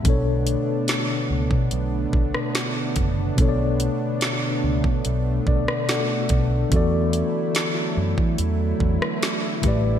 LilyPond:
<<
  \new Staff \with { instrumentName = "Tine electric piano" } { \time 4/4 \key b \minor \tempo 4 = 72 << { r1 | r2 r8 d''8 fis''4 | r1 | } \\ { <b, b d' a' cis''>1 | <b, b d' a' cis'' d''>2. <b, b d' a' d''>4 | <e b fis' a' d''>2.~ <e b fis' a' d''>8 <a, a g' b' d''>8 | } >> }
  \new Staff \with { instrumentName = "Analog synth pad" } { \clef bass \time 4/4 \key b \minor << { <d b d'>1~ | <d b d'>1 | <d e'>1 | } \\ { a1~ | a1 | fis2.~ fis8 g8 | } >> }
  \new Staff \with { instrumentName = "Fingered electric bass" } { \clef bass \time 4/4 \key b \minor b,,8. r8. cis,16 b,16 b,,8 b,,16 r8. fis,,8 | b,,8. r8. cis,16 b,16 b,,8 b,,16 r8. b,,8 | e,8. r8. fis,16 e16 e,8 e,16 r8. a,,8 | }
  \new DrumStaff \with { instrumentName = "Drums" } \drummode { \time 4/4 <hh bd>8 hh8 <hh sn>8. bd16 hh8 bd16 ss16 <hh sn>8 <hh bd>8 | <hh bd>8 hh8 <hh sn>8. bd16 hh8 bd16 ss16 <hh sn>8 <hh bd>8 | <hh bd>8 hh8 <hh sn>8. bd16 hh8 bd16 ss16 <hh sn>8 <hh bd>8 | }
>>